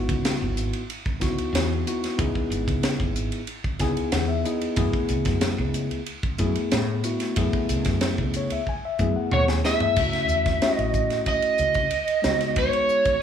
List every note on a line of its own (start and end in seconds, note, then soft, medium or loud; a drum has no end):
0.00 0.81 B3 medium
0.00 0.82 D#4 medium
0.00 0.82 E4 medium
0.00 0.82 F#4 medium
0.09 0.43 C#2 medium
0.09 kick medium
0.09 ride medium
0.25 snare loud
0.25 ride medium
0.41 0.70 G#1 medium
0.57 hi-hat pedal medium
0.57 ride medium
0.73 ride medium
0.90 ride medium
1.06 kick medium
1.20 1.36 C#2 medium
1.20 1.82 B3 medium
1.20 1.82 D#4 medium
1.20 1.82 E4 medium
1.20 1.83 F#4 medium
1.20 kick medium
1.20 snare soft
1.20 hi-hat pedal medium
1.20 ride medium
1.38 ride medium
1.52 1.83 E2 medium
1.52 snare loud
1.52 ride medium
1.86 2.17 B3 medium
1.86 2.17 D#4 medium
1.86 2.17 E4 medium
1.86 2.17 F#4 medium
1.86 hi-hat pedal medium
1.86 ride medium
2.04 snare soft
2.04 ride medium
2.18 2.34 C#2 medium
2.18 3.41 B3 medium
2.18 3.41 D#4 medium
2.18 3.41 E4 medium
2.18 3.42 G#4 medium
2.18 kick loud
2.18 ride medium
2.35 muted fretless electric bass stroke soft
2.35 kick medium
2.50 2.65 G#1 medium
2.50 hi-hat pedal medium
2.50 ride medium
2.68 3.02 C#2 medium
2.68 kick medium
2.68 ride medium
2.83 snare loud
2.83 ride medium
3.00 3.30 G#1 medium
3.00 kick medium
3.16 hi-hat pedal medium
3.16 ride medium
3.32 ride medium
3.47 ride medium
3.64 kick medium
3.79 3.95 C#2 medium
3.79 4.41 B3 medium
3.79 4.41 D#4 medium
3.79 4.42 E4 medium
3.79 4.42 G#4 medium
3.79 4.11 G#5 medium
3.79 kick medium
3.79 snare soft
3.79 hi-hat pedal medium
3.79 ride medium
3.97 ride medium
4.12 4.42 E2 medium
4.12 4.28 F#5 medium
4.12 snare loud
4.12 ride medium
4.28 4.43 E5 medium
4.44 4.75 B3 medium
4.44 4.76 D#4 medium
4.44 4.76 E4 medium
4.44 4.76 G#4 medium
4.44 4.75 D#5 medium
4.44 hi-hat pedal medium
4.44 ride soft
4.61 ride medium
4.76 4.92 F#2 medium
4.76 5.99 A3 medium
4.76 6.00 B3 medium
4.76 6.00 E4 medium
4.76 6.01 G#4 medium
4.76 kick loud
4.76 ride medium
4.93 kick medium
5.09 5.25 C#2 medium
5.09 hi-hat pedal medium
5.09 ride medium
5.25 5.60 F#2 medium
5.25 kick medium
5.25 snare soft
5.25 ride medium
5.41 snare loud
5.41 ride medium
5.58 5.88 C#2 medium
5.74 hi-hat pedal medium
5.74 ride medium
5.91 ride medium
6.06 ride medium
6.23 kick medium
6.38 6.55 F#2 medium
6.38 7.00 A3 medium
6.38 7.01 B3 medium
6.38 7.01 E4 medium
6.38 7.01 G#4 medium
6.38 kick medium
6.38 hi-hat pedal medium
6.38 ride medium
6.55 ride medium
6.71 7.02 A2 medium
6.71 snare loud
6.71 ride medium
7.04 7.35 A3 medium
7.04 7.35 B3 medium
7.04 7.35 E4 medium
7.04 7.35 F#4 medium
7.04 hi-hat pedal medium
7.04 ride medium
7.20 snare soft
7.20 ride medium
7.36 7.52 F#2 medium
7.36 8.59 A3 medium
7.36 8.60 B3 medium
7.36 8.60 E4 medium
7.36 8.60 G#4 medium
7.36 kick loud
7.36 ride medium
7.53 kick medium
7.69 7.85 C#2 medium
7.69 hi-hat pedal medium
7.69 ride medium
7.85 8.20 F#2 medium
7.85 kick medium
7.85 snare soft
7.85 ride medium
8.01 snare loud
8.01 ride medium
8.18 8.48 C#2 medium
8.18 kick medium
8.34 8.51 C#5 medium
8.34 hi-hat pedal medium
8.34 ride medium
8.50 8.66 E5 medium
8.50 ride medium
8.67 8.83 G#5 medium
8.67 kick soft
8.85 9.14 E5 medium
8.99 9.15 F#2 medium
8.99 9.60 A3 medium
8.99 9.61 B3 medium
8.99 9.62 E4 medium
8.99 9.62 G#4 medium
8.99 kick medium
8.99 hi-hat pedal medium
9.16 9.31 F#5 medium
9.31 9.61 D#2 medium
9.31 9.42 C#5 medium
9.31 9.47 F#5 medium
9.31 mid tom medium
9.48 9.94 G#5 medium
9.48 snare medium
9.64 9.95 A3 medium
9.64 9.95 B3 medium
9.64 9.96 E4 medium
9.64 9.95 G#4 medium
9.64 10.73 E5 medium
9.64 snare medium
9.64 hi-hat pedal medium
9.80 floor tom medium
9.96 10.29 C#2 medium
9.96 10.59 A3 medium
9.96 10.59 C#4 medium
9.96 10.59 E4 medium
9.96 10.59 F#4 medium
9.96 kick medium
9.96 crash medium
10.13 snare soft
10.13 ride soft
10.28 10.59 E2 medium
10.28 hi-hat pedal medium
10.46 kick medium
10.46 snare soft
10.46 ride medium
10.62 11.85 A3 medium
10.62 11.85 C#4 medium
10.62 11.86 E4 medium
10.62 11.86 F#4 medium
10.62 snare loud
10.62 ride medium
10.68 11.24 D#5 medium
10.73 11.27 D#5 medium
10.78 11.08 A1 medium
10.78 ride soft
10.93 kick medium
10.93 hi-hat pedal medium
11.10 snare soft
11.10 ride medium
11.26 12.53 D#5 medium
11.26 kick medium
11.26 ride medium
11.42 ride medium
11.58 11.89 C#2 medium
11.58 hi-hat pedal medium
11.74 kick medium
11.74 ride medium
11.91 ride medium
12.08 ride medium
12.22 12.54 C#2 medium
12.22 13.16 G#3 medium
12.22 13.16 B3 medium
12.22 13.16 D#4 medium
12.22 13.17 F#4 medium
12.22 snare loud
12.22 hi-hat pedal medium
12.41 snare soft
12.41 ride medium
12.56 13.22 C#5 medium
12.56 kick medium
12.56 ride medium
12.73 ride medium
12.89 hi-hat pedal medium
13.05 kick medium
13.05 ride medium